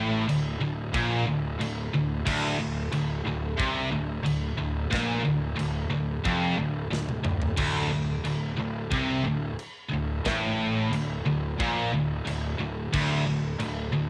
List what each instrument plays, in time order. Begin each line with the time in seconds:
Already playing: picked electric bass A1, distorted electric guitar A2
0.28 picked electric bass D1, distorted electric guitar D2, china
0.61 picked electric bass D1, distorted electric guitar D2
0.94 picked electric bass A#1, distorted electric guitar A#2, kick, china
1.27 picked electric bass D1, distorted electric guitar D2
1.60 picked electric bass D1, distorted electric guitar D2, china
1.94 picked electric bass D1, distorted electric guitar D2
2.26 picked electric bass D1, distorted electric guitar D2, kick, china, crash
2.60 picked electric bass D1, distorted electric guitar D2
2.92 picked electric bass D1, distorted electric guitar D2, china
3.25 picked electric bass D1, distorted electric guitar D2
3.59 picked electric bass C2, distorted electric guitar C3, kick, china
3.92 picked electric bass D1, distorted electric guitar D2
4.25 picked electric bass D1, distorted electric guitar D2, china
4.58 picked electric bass D1, distorted electric guitar D2
4.91 picked electric bass A#1, distorted electric guitar A#2, kick, snare, china
5.25 picked electric bass D1, distorted electric guitar D2
5.56 picked electric bass D1, distorted electric guitar D2, china
5.90 picked electric bass D1, distorted electric guitar D2
6.24 picked electric bass F1, distorted electric guitar F2, kick, china
6.57 picked electric bass D1, distorted electric guitar D2
6.90 picked electric bass D1, distorted electric guitar D2, snare
7.09 high tom
7.24 picked electric bass D1, distorted electric guitar D2, mid tom
7.42 floor tom
7.57 picked electric bass D1, distorted electric guitar D2, kick, crash, china, splash
7.90 picked electric bass D1, distorted electric guitar D2
8.24 picked electric bass D1, distorted electric guitar D2, china
8.57 picked electric bass D1, distorted electric guitar D2
8.91 picked electric bass C2, distorted electric guitar C3, kick, china
9.24 picked electric bass D1, distorted electric guitar D2
9.59 china
9.89 picked electric bass D1, distorted electric guitar D2
9.94 distorted electric guitar D2
10.25 picked electric bass A1, distorted electric guitar A2, kick, snare, china
10.91 picked electric bass D1, distorted electric guitar D2, china
11.25 picked electric bass D1, distorted electric guitar D2
11.60 picked electric bass A#1, distorted electric guitar A#2, kick, china
11.93 picked electric bass D1, distorted electric guitar D2
12.25 picked electric bass D1, distorted electric guitar D2, china
12.59 picked electric bass D1, distorted electric guitar D2
12.93 picked electric bass D1, distorted electric guitar D2, kick, china, crash
13.26 picked electric bass D1, distorted electric guitar D2
13.59 picked electric bass D1, distorted electric guitar D2, china
13.92 picked electric bass D1, distorted electric guitar D2